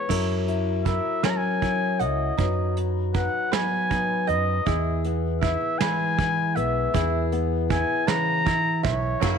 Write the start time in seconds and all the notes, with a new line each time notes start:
Already playing: B3 C#5
0.09 F#2 F#3 E4 A#4, kick, crash
0.48 E4, closed hi-hat
0.84 E4 A#4 E5, kick, closed hi-hat
1.23 F#3 C#4 A#4 G#5, snare, closed hi-hat
1.30 A#5
1.37 G#5
1.62 E4, kick, closed hi-hat
2.00 C#2 E4 D#5 F#5, closed hi-hat
2.38 F#2 F#3 D#4 B4, kick, closed hi-hat
2.77 D#4, closed hi-hat
3.14 D#4 B4 F#5, kick, closed hi-hat
3.52 F#3 B3 B4 G#5, snare, closed hi-hat
3.90 D#4, kick, closed hi-hat
4.27 F#2 D#4 D#5, closed hi-hat
4.66 E2 E3 E4 G#4, kick, closed hi-hat
5.04 B3, closed hi-hat
5.41 E4 E5, kick, closed hi-hat
5.78 E3 G#3 G#4 B4 G#5, snare, closed hi-hat
6.18 E4, kick, closed hi-hat
6.56 B1 B3 E5, closed hi-hat
6.94 E2 E3 E4 G#4, kick, closed hi-hat
7.32 B3, closed hi-hat
7.70 E4 G#5, kick, closed hi-hat
8.07 C#3 E3 B4 A#5, snare, closed hi-hat
8.46 E4, kick, closed hi-hat
8.83 B1 E3 C#5 E5, kick, closed hi-hat
9.20 F#1 F#2 C#3 E3 F#3 A#3 C#4 E4 F#4 A#4, kick, closed hi-hat